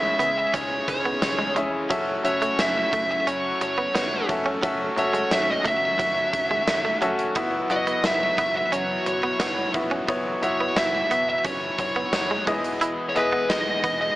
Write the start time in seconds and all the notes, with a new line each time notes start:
Already playing: C#2 C#3 E3 G#3 C#4 E4 G#4 E5 F#5
0.19 C#2 B3, closed hi-hat
0.38 E5
0.53 C#2 C#3 G#3 C#4 C#5, kick, closed hi-hat
0.88 C#2 C#5, muted clean electric guitar stroke, kick, closed hi-hat
1.05 B3
1.22 C#2 C#3 G#3 C#4, muted clean electric guitar stroke, snare, closed hi-hat, tambourine
1.39 G#3
1.56 F1 G#3 C#4 E4 G#4 E5, closed hi-hat
1.90 F#1 F#3 A3 C#4 E4 F#4 A4 E5, kick, closed hi-hat
2.23 F#1 C#4 F#4 A4 C#5 E5, muted clean electric guitar stroke, closed hi-hat
2.42 A3, closed hi-hat
2.59 F#1 E5, snare, closed hi-hat, tambourine
2.93 F#1 A3, kick, closed hi-hat
3.11 E5
3.27 F#1 F#3 C#4 F#4 C#5, closed hi-hat
3.61 F#1 C#5, muted clean electric guitar stroke, closed hi-hat
3.78 B3
3.95 F#1 F#3 B3 C#4 F#4, snare, closed hi-hat, tambourine
4.29 F1 C#4 F#4 A4 E5, muted clean electric guitar stroke, kick, closed hi-hat
4.46 C#4
4.62 F#1 D#3 F#3 C#4 F#4 A4 E5, kick, closed hi-hat
4.97 F#1 C#4 F#4 A4 C#5 E5, muted clean electric guitar stroke, closed hi-hat
5.13 G#3, closed hi-hat
5.31 F#1 E5, snare, closed hi-hat, tambourine
5.51 D#5
5.65 F#1 A3 E5, kick, closed hi-hat
5.99 F#1 F#3 C#4 F#4, kick, closed hi-hat
6.33 F#1, muted clean electric guitar stroke, kick, closed hi-hat
6.51 G#3
6.67 F#1 F#3 C#4 F#4, muted clean electric guitar stroke, snare, closed hi-hat, tambourine
6.85 A3
7.01 F1 F#3 C#4 F#4 A4 E5, closed hi-hat
7.19 closed hi-hat
7.34 F#1 B2 E3 F#3 B3 E4 F#4 E5, kick, closed hi-hat
7.70 F#1 B3 E4 F#4 D#5 F#5, muted clean electric guitar stroke, closed hi-hat
7.87 B3, closed hi-hat
8.04 F#1 E5, snare, closed hi-hat, tambourine
8.38 F#1 B3, kick, closed hi-hat
8.57 E5
8.72 F#1 B2 F#3 B3 C#4 C#5, closed hi-hat
9.06 F#1 C#5, muted clean electric guitar stroke, closed hi-hat
9.23 B3
9.40 F#1 B2 F#3 B3, snare, closed hi-hat, tambourine
9.74 F1 B3 E4 F#4 E5, muted clean electric guitar stroke, kick, closed hi-hat
9.91 C#4
10.07 F#1 B2 F#3 B3 E4 F#4 C#5, kick, closed hi-hat
10.11 B3
10.42 F#1 B3 E4 F#4 C#5 E5, muted clean electric guitar stroke, closed hi-hat
10.60 B3
10.76 F#1 E5, snare, closed hi-hat, tambourine
11.11 F#1 B3, closed hi-hat
11.29 E5
11.44 F#1 B2 F#3 B3 C#4 C#5, kick, closed hi-hat
11.78 F#1 C#5, muted clean electric guitar stroke, kick, closed hi-hat
11.96 B3
12.12 F#1 B2 F#3 B3, muted clean electric guitar stroke, snare, closed hi-hat, tambourine
12.31 G#3
12.47 E1 B2 E3 G#3 B3 E4 G#4 D#5, kick, closed hi-hat
12.64 closed hi-hat
12.81 E4, closed hi-hat
13.09 C#5
13.15 E1 B3 E4 G#4 B4 D#5, muted clean electric guitar stroke, closed hi-hat
13.32 B3
13.49 E1 D#5, snare, closed hi-hat, tambourine
13.84 E1 B3, kick, closed hi-hat
14.01 D#5